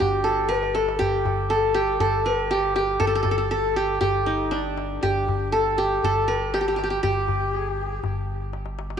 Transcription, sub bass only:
0.01 G1
1.00 G1
2.00 G1
3.01 G1
4.01 G1
5.03 G1
6.04 G1
7.03 G1
8.03 G1

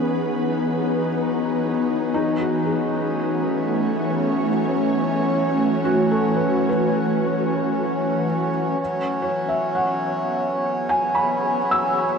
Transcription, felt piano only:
2.14 D#4
2.40 F#4
2.66 G#4
5.85 F#4
6.11 A4
6.36 B4
6.69 B4
9.22 C#5
9.49 E5
9.75 F#5
10.89 G#5
11.15 B5
11.71 E6

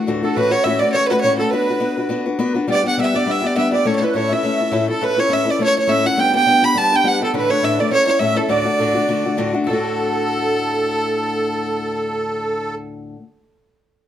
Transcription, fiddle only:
0.23 A4
0.35 B4
0.51 C#5
0.64 E5
0.79 D5
0.92 C#5
1.08 B4
1.21 C#5
1.39 A4
1.50 B4
2.72 D5
2.88 F#5
3.01 E5
3.16 D5
3.31 E5
3.46 D5
3.57 E5
3.73 D5
3.87 C#5
3.96 C#5
4.04 B4
4.15 C#5
4.32 E5
4.89 A4
5.03 B4
5.19 C#5
5.33 E5
5.50 D5
5.64 C#5
5.78 C#5
5.89 E5
6.06 F#5
6.19 G5
6.35 G5
6.64 B5
6.77 A5
6.95 G5
7.07 F#5
7.24 A4
7.36 B4
7.50 C#5
7.64 E5
7.80 D5
7.93 C#5
8.07 C#5
8.19 E5
8.37 A4
8.49 D5
9.66 A4

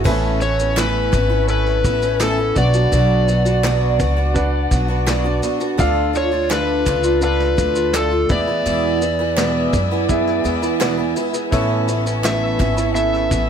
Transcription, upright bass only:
0.05 A1
1.13 G#1
1.84 A1
2.56 B1
2.92 B1
4.00 C#2
4.71 B1
5.79 D2
6.87 C#2
7.58 D2
8.30 E2
8.66 E2
9.73 F#2
10.45 E2
11.52 A1
12.60 G#1
13.31 A1

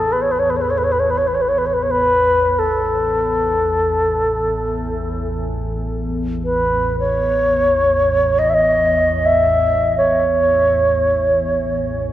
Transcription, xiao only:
Already playing: A4
0.12 B4
0.22 C#5
0.32 B4
0.40 C#5
0.50 B4
0.57 C#5
0.61 B4
0.70 C#5
0.78 B4
0.84 C#5
0.92 B4
1.00 C#5
1.10 B4
1.18 C#5
1.27 B4
1.35 C#5
1.42 B4
1.49 C#5
1.58 B4
1.66 C#5
1.73 B4
1.83 C#5
1.91 B4
2.59 A4
6.45 B4
7.00 C#5
8.39 D#5
8.50 E5
8.54 D#5
9.26 E5
9.98 C#5

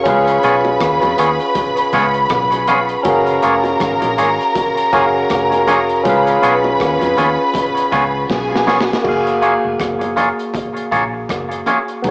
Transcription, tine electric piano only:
0.03 C#4 F4 G#4
0.08 B4 F5
3.03 C#4 F#4 G#4
3.08 A#4 F5
4.92 C#4 F#4 G#4 A#4 F5
6.03 C#4 F4 G#4
6.08 B4 F5
9.02 A#3 F#4
9.07 G#4 F5
12.02 B3 D#4
12.07 G#4

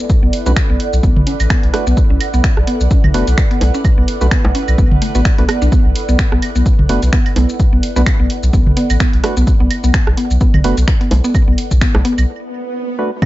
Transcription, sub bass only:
0.23 B1
0.46 B1
0.70 B1
0.93 B1
1.03 B1
1.17 B1
1.40 A1
1.63 B1
1.87 B1
2.10 B1
2.34 B1
2.57 B1
2.81 B1
3.04 B1
3.14 F#1
3.28 B1
3.61 B1
3.98 B1
4.21 B1
4.45 B1
4.68 B1
4.78 B1
4.92 B1
5.15 A1
5.38 B1
5.62 B1
5.85 B1
6.09 B1
6.32 B1
6.56 B1
6.79 B1
6.89 F#1
7.03 B1
7.36 B1
7.73 B1
7.96 B1
8.20 B1
8.43 B1
8.53 B1
8.67 B1
8.90 A1
9.13 B1
9.37 B1
9.60 B1
9.84 B1
10.07 B1
10.31 B1
10.54 B1
10.64 F#1
10.77 B1
11.11 B1
11.48 B1
11.71 B1
11.95 B1
12.18 B1

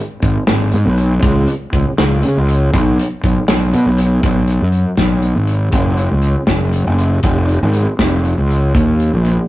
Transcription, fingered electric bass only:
0.22 G#1
0.49 G#1
0.73 G#2
0.86 B1
1.23 C#2
1.73 C#2
1.99 C#2
2.25 C#3
2.37 C#2
2.74 B1
3.24 B1
3.49 B1
3.74 B2
3.86 B1
4.23 B1
4.61 F#2
4.98 B1
5.36 G#1
5.73 F#1
6.12 C#2
6.48 F#1
6.87 F#1
7.23 F1
7.63 G#1
7.99 F1
8.38 C#2
8.75 D#2
9.14 A#1

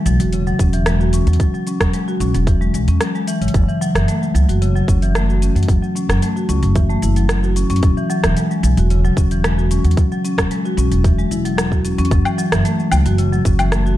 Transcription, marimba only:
0.06 F#3
0.20 F#4
0.33 C#3
0.47 F#3
0.60 C#4
0.74 E3
0.87 G#3
1.01 F#4
1.14 C#4
1.27 F#3
1.40 F#3
1.54 F#3
1.67 C#4
1.81 F#3
1.94 G#3
2.08 F#4
2.21 C#4
2.35 F#3
2.48 E3
2.61 G#3
2.74 G#3
2.88 C#4
3.01 F#3
3.15 G#3
3.28 E3
3.42 C#3
3.55 F#3
3.69 E3
3.81 F#3
3.95 E3
4.08 A3
4.22 G#3
4.35 F#3
4.49 F#4
4.62 C#3
4.75 F#3
4.88 C#4
5.02 E3
5.15 A3
5.29 F#4
5.42 C#4
5.56 F#3
5.69 F#3
5.82 F#3
5.96 C#4
6.10 F#3
6.23 A3
6.36 F#4
6.49 C#4
6.63 F#3
6.76 E3
6.90 A3
7.03 E4
7.16 F#3
7.29 F#3
7.43 F#4
7.56 C#4
7.70 C#4
7.83 F#3
7.97 E3
8.10 F#3
8.24 E3
8.37 G#3
8.51 G#3
8.64 F#3
8.78 F#4
8.91 C#3
9.05 F#3
9.17 C#4
9.31 E3
9.44 G#3
9.58 F#4
9.71 C#4
9.85 F#3
9.98 F#3
10.12 F#3
10.24 C#4
10.38 F#3
10.51 G#3
10.65 F#4
10.78 C#4
10.92 F#3
11.04 E3
11.19 G#3
11.31 E4
11.45 F#3
11.58 F#3
11.72 F#4
11.85 C#4
11.99 C#4
12.12 F#3
12.26 E3
12.38 F#3
12.52 E3
12.65 A3
12.79 G#3
12.92 F#3
13.06 F#4
13.19 C#3
13.33 F#3
13.46 C#4
13.60 E3
13.72 A3
13.86 F#4

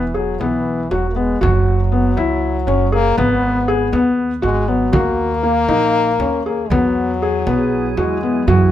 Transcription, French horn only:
Already playing: E3
0.15 F#3
0.40 E3
0.92 F#3
1.10 A#3
1.16 G#3
1.42 F#3
2.93 A#3
3.19 B3
4.42 G#3
4.69 F#3
4.95 A#3
6.46 A#3
6.72 F#3
7.98 G#3
8.48 E3

